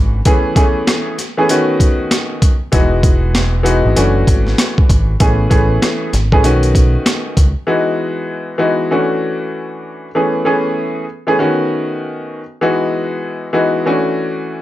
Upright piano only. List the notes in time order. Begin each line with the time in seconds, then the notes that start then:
Already playing: E3 A3 C#4 D4 F#4
0.25 E3 A3 B3 C#4 G#4
0.55 E3 A3 B3 C#4 G#4
1.37 E3 A3 B3 C#4 G#4
1.49 D#3 A3 B3 C#4 F#4
2.72 E3 G#3 B3 D#4 F#4
3.63 E3 G#3 B3 D#4 F#4
3.96 E3 A3 C#4 D4 F#4
5.20 E3 A3 B3 C#4 G#4
5.50 E3 A3 B3 C#4 G#4
6.32 E3 A3 B3 C#4 G#4
6.44 D#3 A3 B3 C#4 F#4
7.67 E3 G#3 B3 D#4 F#4
8.58 E3 G#3 B3 D#4 F#4
8.91 E3 A3 C#4 D4 F#4
10.15 E3 A3 B3 C#4 G#4
10.45 E3 A3 B3 C#4 G#4
11.27 E3 A3 B3 C#4 G#4
11.39 D#3 A3 B3 C#4 F#4
12.61 E3 G#3 B3 D#4 F#4
13.53 E3 G#3 B3 D#4 F#4
13.86 E3 A3 C#4 D4 F#4